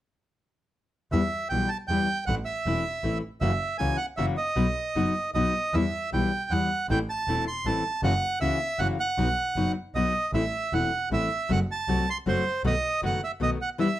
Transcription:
1.12 E2 B2 E3 G3 B3 E4 E5
1.49 B1 B2 E3 G3 B3 E4 G5
1.68 A5
1.88 E2 B2 E3 G3 B3 E4 G5
2.26 A1 E3 A3 C4 E4 F#5
2.45 E5
2.66 E1 E3 A3 C4 E4
3.03 A1 E3 A3 C4 E4
3.41 F#1 C#3 E3 A#3 C#4 F#4 E5
3.78 C#2 C#3 E3 A#3 C#4 F#4 G#5
3.97 F#5
4.17 F#1 C#3 E3 A#3 C#4 F#4 E5
4.37 D#5
4.56 B1 B2 F#3 B3 D#4 F#4
4.95 F#1 B2 F#3 B3 D#4 F#4
5.34 B1 B2 F#3 B3 D#4 F#4 D#5
5.73 E2 B2 E3 G3 B3 E4 E5
6.12 B1 B2 E3 G3 B3 E4 G5
6.51 E2 B2 E3 G3 B3 E4 F#5
6.89 A1 E3 A3 C4 E4 G5
7.10 A5
7.28 E1 E3 A3 C4 E4
7.48 C6
7.65 A1 E3 A3 C4 E4 A5
8.03 F#1 C#3 E3 A#3 C#4 F#4 F#5
8.41 C#2 C#3 E3 A#3 C#4 F#4 E5
8.79 F#1 C#3 E3 A#3 C#4 F#4 F#5
9.00 F#5
9.18 B1 B2 F#3 B3 D#4 F#4
9.56 F#1 B2 F#3 B3 D#4 F#4
9.94 B1 B2 F#3 B3 D#4 F#4 D#5
10.33 A1 E3 A3 C4 E4 E5
10.73 E1 E3 A3 C4 E4 F#5
11.11 A1 E3 A3 C4 E4 E5
11.49 F#1 F#3 A3 C4 F#4 F#5
11.71 A5
11.88 C2 F#3 A3 C4 F#4
12.10 C6
12.26 F#1 F#3 A3 C4 F#4 C5
12.64 B1 B2 D#3 A3 B3 F#4 D#5
13.03 F#1 B2 D#3 A3 B3 F#4 F#5
13.24 E5
13.40 B1 B2 D#3 A3 B3 F#4 D#5
13.62 F#5
13.78 B2 E3 G3 B3 E4 E5

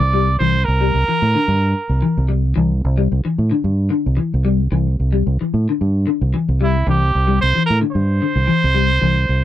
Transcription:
Already playing: D5
0.00 C2
0.13 G3
0.38 C2 E3 C5
0.64 C2 A#4
0.81 G3
0.94 C2
1.08 E3, muted fingered electric bass stroke
1.22 A2
1.35 D3
1.48 G2
1.89 C2
2.02 E3
2.17 C2
2.28 G3
2.56 C2 E3
2.84 C2
2.98 G3
3.12 C2
3.25 E3
3.38 A2
3.51 D3
3.64 G2
3.90 D3
4.06 C2
4.17 E3
4.34 C2
4.45 G3
4.72 C2 E3
4.99 C2
5.12 G3
5.27 C2
5.41 E3, muted fingered electric bass stroke
5.54 A2
5.69 D3
5.81 G2
6.07 D3
6.21 C2
6.34 E3
6.49 C2
6.61 G3 E4
6.87 C2 E3 G4
7.15 C2
7.27 G3
7.41 C2 C5
7.55 E3
7.66 A#4
7.70 A2
7.81 D3
7.91 G2 C5
8.22 D3
8.36 C2
8.47 E3
8.64 C2
8.75 G3
9.01 C2 E3
9.29 C2

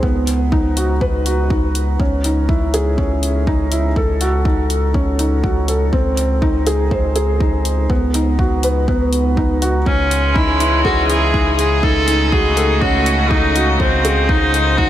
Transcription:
0.03 C#2 B3, kick
0.27 closed hi-hat
0.52 D#4, kick
0.77 F#4, closed hi-hat
1.01 B4, kick
1.26 F#4, closed hi-hat
1.50 D#4, kick
1.75 closed hi-hat
2.00 C#2 C#4, kick
2.24 D#4, closed hi-hat
2.49 E4, kick
2.74 G#4, closed hi-hat
2.98 C#4, kick
3.23 closed hi-hat
3.47 D#4, kick
3.72 E4, closed hi-hat
3.96 C#2 A4, kick
4.21 F#4, closed hi-hat
4.45 D#4, kick
4.70 closed hi-hat
4.94 C#4, kick
5.19 D#4, closed hi-hat
5.44 F#4, kick
5.68 A4, closed hi-hat
5.93 C#2 C4, kick
6.17 closed hi-hat
6.42 D#4, kick
6.67 G#4, closed hi-hat
6.91 C5, kick
7.16 G#4, closed hi-hat
7.40 D#4, kick
7.65 closed hi-hat
7.90 C#2 B3, kick
8.14 D#4, closed hi-hat
8.39 F#4, kick
8.63 B4, closed hi-hat
8.88 B3, kick
9.13 closed hi-hat
9.37 D#4, kick
9.62 F#4, closed hi-hat
9.86 C#2 C#3 C#4, kick
10.01 G#3
10.11 closed hi-hat
10.28 E3
10.34 D#4 E4 D#5, kick
10.60 E4, closed hi-hat
10.84 F#4 G#4, kick
11.08 E4 G#4, closed hi-hat
11.34 D#4, kick
11.58 G#4, closed hi-hat
11.83 C#2 D#4 A4, kick
11.97 A3
12.08 D#4, closed hi-hat
12.32 F#4 G#4, kick
12.57 A4, closed hi-hat
12.81 C#4 F#4, kick
13.06 closed hi-hat
13.30 D#4, kick
13.56 F#4, closed hi-hat
13.79 C#2 C4 C5, kick
13.91 G#3
14.05 G#4, closed hi-hat
14.17 C5
14.29 D#4, kick
14.54 closed hi-hat
14.78 D#4 F#4, kick

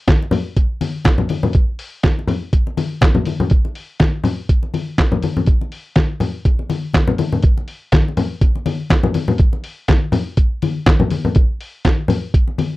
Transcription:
0.07 kick, snare, clap, closed hi-hat, high conga
0.22 muted conga
0.31 open hi-hat, low conga
0.56 kick, closed hi-hat, muted conga
0.81 open hi-hat, high conga
1.05 kick, snare, clap, closed hi-hat, muted conga, high conga
1.18 low conga
1.29 open hi-hat, high conga
1.43 low conga
1.53 kick, closed hi-hat
1.79 open hi-hat
2.03 kick, snare, clap, closed hi-hat, high conga
2.19 muted conga
2.28 open hi-hat, low conga
2.53 kick, closed hi-hat, muted conga
2.67 muted conga
2.77 open hi-hat, high conga
3.01 kick, snare, clap, closed hi-hat, muted conga, high conga
3.15 low conga
3.25 open hi-hat, high conga
3.40 low conga
3.50 kick, closed hi-hat
3.65 muted conga
3.75 open hi-hat
4.00 kick, snare, clap, closed hi-hat, muted conga, high conga
4.24 open hi-hat, low conga
4.49 kick, closed hi-hat
4.63 muted conga
4.74 open hi-hat, high conga
4.98 kick, snare, clap, closed hi-hat, muted conga, high conga
5.12 low conga
5.22 open hi-hat, high conga
5.37 low conga
5.46 kick, closed hi-hat, muted conga
5.61 muted conga
5.72 open hi-hat
5.96 kick, snare, clap, closed hi-hat, high conga
6.20 open hi-hat, low conga
6.45 kick, closed hi-hat, muted conga
6.59 muted conga
6.70 open hi-hat, high conga
6.93 kick, snare, clap, closed hi-hat, high conga
7.08 muted conga, low conga
7.18 open hi-hat, high conga
7.32 low conga
7.42 kick, closed hi-hat
7.58 muted conga
7.68 open hi-hat
7.92 kick, snare, clap, closed hi-hat, muted conga, high conga
8.08 muted conga
8.17 open hi-hat, low conga
8.41 kick, closed hi-hat, muted conga
8.56 muted conga
8.66 open hi-hat, high conga
8.90 kick, snare, clap, closed hi-hat, high conga
9.03 muted conga, low conga
9.14 open hi-hat, high conga
9.28 low conga
9.38 kick, closed hi-hat
9.53 muted conga
9.64 open hi-hat
9.88 kick, snare, clap, closed hi-hat, muted conga, high conga
10.12 open hi-hat, low conga
10.37 kick, closed hi-hat
10.62 open hi-hat, high conga
10.86 kick, snare, clap, closed hi-hat, muted conga, high conga
11.00 low conga
11.10 open hi-hat, high conga
11.25 low conga
11.35 kick, closed hi-hat, muted conga
11.61 open hi-hat
11.85 kick, snare, clap, closed hi-hat, high conga
12.08 open hi-hat, low conga
12.34 kick, closed hi-hat
12.48 muted conga
12.58 open hi-hat, high conga

